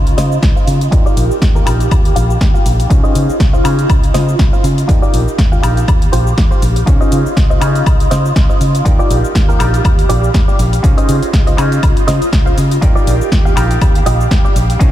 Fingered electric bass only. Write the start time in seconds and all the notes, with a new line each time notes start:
Already playing: C#2
0.17 C#3
0.43 C#2
0.67 C#3
0.92 D#2
1.17 A#1
1.31 muted fingered electric bass stroke
1.42 D#2
1.67 A#1
1.91 D#2
2.16 A#1
2.41 D#2
2.66 A#1
2.90 C#2
3.04 muted fingered electric bass stroke
3.15 C#3
3.29 muted fingered electric bass stroke
3.40 C#2
3.65 C#3
3.90 C#2
4.14 C#3
4.39 C#2
4.64 C#3
4.89 D#2
5.13 A#1
5.27 muted fingered electric bass stroke
5.38 D#2
5.63 A#1
5.88 D#2
6.13 A#1
6.38 D#2
6.62 A#1
6.87 C#2
7.01 muted fingered electric bass stroke
7.12 C#3
7.26 muted fingered electric bass stroke
7.37 C#2
7.61 C#3
7.86 C#2
8.11 C#3
8.36 C#2
8.61 C#3
8.85 D#2
9.10 A#1
9.24 muted fingered electric bass stroke
9.35 D#2
9.60 A#1
10.10 A#1
10.34 D#2
10.59 A#1
10.84 C#2
11.09 C#3
11.23 muted fingered electric bass stroke
11.33 C#2
11.58 C#3
11.83 C#2
12.08 C#3
12.22 muted fingered electric bass stroke
12.32 C#2
12.57 C#3
12.82 D#2
13.07 A#1
13.21 muted fingered electric bass stroke
13.32 D#2
13.57 A#1
13.81 D#2
14.06 A#1
14.31 D#2
14.56 A#1
14.80 C#2